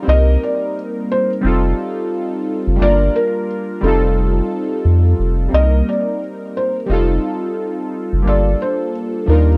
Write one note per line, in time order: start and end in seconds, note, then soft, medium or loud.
0.03 0.98 G3 medium
0.03 1.00 A#3 medium
0.03 0.99 C4 medium
0.08 0.37 C2 loud
0.08 1.01 D#4 medium
0.08 1.02 A#4 medium
0.08 0.39 D#5 loud
0.43 0.73 D5 medium
1.12 1.30 C5 medium
1.41 1.73 F1 loud
1.41 2.36 G3 medium
1.41 2.37 C4 medium
1.41 2.37 D#4 medium
1.46 2.38 F4 medium
1.46 2.39 A4 medium
2.67 2.78 F#1 loud
2.76 3.71 G3 medium
2.76 2.87 A3 soft
2.76 3.73 D4 medium
2.80 3.09 G1 loud
2.80 3.76 A#3 medium
2.80 3.74 F4 medium
2.80 3.75 A#4 medium
2.80 3.12 D5 loud
3.16 3.46 A#4 medium
3.81 4.41 F1 loud
3.81 4.92 G3 medium
3.81 4.93 C4 medium
3.81 4.94 D#4 medium
3.81 4.02 A4 medium
3.86 4.95 F4 medium
3.86 4.96 A4 medium
4.85 5.14 F2 loud
5.19 5.48 F1 medium
5.49 6.44 G3 medium
5.49 6.46 A#3 medium
5.49 6.45 C4 medium
5.53 5.82 C2 medium
5.53 6.47 D#4 medium
5.53 6.48 A#4 medium
5.53 5.88 D#5 loud
5.89 6.19 D5 medium
6.57 6.75 C5 medium
6.86 7.18 F1 loud
6.86 7.81 G3 medium
6.86 7.82 C4 medium
6.86 7.83 D#4 medium
6.91 7.84 F4 medium
6.91 7.84 A4 medium
8.13 8.24 F#1 loud
8.22 8.55 G1 loud
8.22 9.17 G3 medium
8.22 9.18 A#3 medium
8.22 9.19 D4 medium
8.27 9.20 F4 medium
8.27 9.21 A4 medium
8.27 8.57 D5 medium
8.62 8.92 C5 medium
9.26 9.57 D#2 loud
9.26 9.35 F3 medium
9.26 9.57 D4 medium
9.26 9.57 D#4 medium
9.26 9.48 A#4 medium
9.31 9.57 G3 medium
9.31 9.57 F4 medium
9.31 9.57 A#4 medium